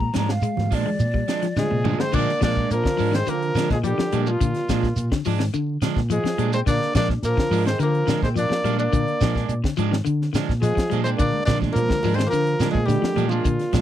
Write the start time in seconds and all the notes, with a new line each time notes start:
Already playing: A#5
0.00 kick
0.14 G#2 F3 G#3 D4 A#5, snare, closed hi-hat, high conga, shekere
0.29 F5, snare
0.42 G#3, closed hi-hat, high conga, shekere
0.57 G#2, snare, high conga, low conga
0.71 A#2 F3 G#3 D4 D5, kick, open hi-hat, shekere
0.85 G#3, low conga
1.00 A#2, closed hi-hat, high conga, shekere
1.14 G3, kick
1.28 F3 G#3 D4, snare, closed hi-hat, shekere
1.42 F3, snare, closed hi-hat
1.56 D3 F3 G#3 G#4, snare, high conga, shekere
1.71 A#2 C3
1.84 D3 F3 G#3 D4, mid tom, high conga, shekere
1.99 D3 G#3 C4 C5, snare
2.12 A#2 D3 F3 G#3 A#3 D4 D5, kick, crash, shekere
2.29 snare
2.41 A#2 F3 G#3 A#3 D4 D5, muted clean electric guitar stroke, kick, snare, closed hi-hat, shekere
2.56 G#3, muted clean electric guitar stroke, kick, shekere
2.71 A#2 F3 A#3 A#4, closed hi-hat, shekere
2.84 D3, kick, snare
2.97 G#2 F3 G#3 D4, open hi-hat, shekere
3.12 D#3 G#3 C4 C5, snare, closed hi-hat, shekere
3.26 D3 F3 A#3 A#4, closed hi-hat, shekere
3.42 closed hi-hat
3.55 D3 F3 G#3 D4, snare, closed hi-hat, shekere
3.69 A#2 F3 G#3 G#4, kick, snare, shekere
3.83 D3 F3 G3 G4, closed hi-hat, shekere
3.98 F3, muted fingered electric bass stroke, snare
4.12 A#2 F3 G3 G#3 D4, closed hi-hat, shekere
4.26 A#2 F3 F4, shekere
4.40 A#2 D3, kick, closed hi-hat, shekere
4.54 snare, closed hi-hat
4.69 A#2 F3 G#3 D4, kick, snare, closed hi-hat, shekere
4.83 kick, snare, shekere
4.96 A#2, closed hi-hat, shekere
5.12 D3, kick, snare
5.25 G#2 F3 G#3 D4, muted clean electric guitar stroke, open hi-hat, shekere
5.39 D#3, snare, shekere
5.54 D3, closed hi-hat, shekere
5.82 D3 F3 G#3 D4, snare, closed hi-hat, shekere
5.96 A#2, kick, snare, shekere
6.10 F3 G#3 G#4, closed hi-hat, shekere
6.24 F3, muted fingered electric bass stroke, snare, closed hi-hat
6.38 A#2 G3 G#3 D4, muted clean electric guitar stroke, closed hi-hat, shekere
6.53 G#3 C4 C5, closed hi-hat, shekere
6.66 A#2 D3 A#3 D4 D5, kick, closed hi-hat, shekere
6.82 snare
6.95 A#2 F3 G#3 A#3 D4 D5, kick, snare, closed hi-hat, shekere
7.09 kick, snare, shekere
7.23 A#2 F3 A#3 A#4, closed hi-hat, shekere
7.37 D3, kick, snare
7.51 G#2 F3 G#3 D4, open hi-hat, shekere
7.66 D#3 G#3 C4 C5, snare, closed hi-hat, shekere
7.79 D3 F3 A#3 A#4, closed hi-hat, shekere
7.95 closed hi-hat
8.07 D3 F3 G#3 D4, snare, closed hi-hat, shekere
8.22 A#2 G#3 C4 C5, kick, snare, shekere
8.36 F3 A#3 D4 D5, snare, closed hi-hat, shekere
8.49 F3, muted fingered electric bass stroke, snare
8.64 A#2 F3 G3 G#3 D4, closed hi-hat, shekere
8.79 A#3 D4 D5, shekere
8.93 A#2 D3, kick, closed hi-hat, shekere
9.08 closed hi-hat
9.21 A#2 F3 G#3 D4, kick, snare, closed hi-hat, shekere
9.36 G#3 D4, kick, snare, shekere
9.49 A#2, closed hi-hat, shekere
9.64 D3, kick, snare
9.77 G#2 F3 G#3 D4, closed hi-hat, shekere
9.91 D#3, snare, shekere
10.05 D3, closed hi-hat, shekere
10.22 snare
10.33 D3 F3 G#3 D4, snare, closed hi-hat, shekere
10.49 A#2, kick, snare, shekere
10.62 F3 G#3 G#4, snare, closed hi-hat, shekere
10.75 F3, kick, snare, closed hi-hat
10.90 A#2 F3 G3 G#3 D4, closed hi-hat, shekere
11.04 G#3 C4 D4 C5, closed hi-hat, shekere
11.17 A#2 D3 A#3 D4 D5, kick, closed hi-hat, shekere
11.33 high conga
11.45 A#2 D3 F3 G#3 A#3 D4 D5, kick, snare, closed hi-hat, high conga, shekere
11.61 G#3 D4, kick, snare, low conga, shekere
11.73 A#2 F3 A#3 A#4, closed hi-hat, high conga, shekere
11.88 D3, kick, snare, high conga
12.03 G#2 F3 G#3 D4, muted clean electric guitar stroke, open hi-hat, high conga, low conga, shekere
12.14 G#3 C4 C5
12.18 D#3, snare, closed hi-hat, shekere
12.27 F3 A#3 A#4
12.32 D3, closed hi-hat, shekere
12.47 closed hi-hat
12.60 D3 F3 G#3 D4, snare, closed hi-hat, high conga, shekere
12.71 F3 G#3 G#4
12.75 A#2, kick, shekere
12.86 D3 G3 G4, closed hi-hat, high conga, shekere
12.90 snare
13.02 F3, muted fingered electric bass stroke, snare
13.16 A#2 F3 G3 G#3 D4, closed hi-hat, low conga, shekere
13.29 A#2 F3 G#3 D4 F4, shekere
13.45 A#2 D3, kick, closed hi-hat, shekere
13.59 snare, closed hi-hat
13.73 A#2 F3 G#3 D4, kick, snare, closed hi-hat, high conga, shekere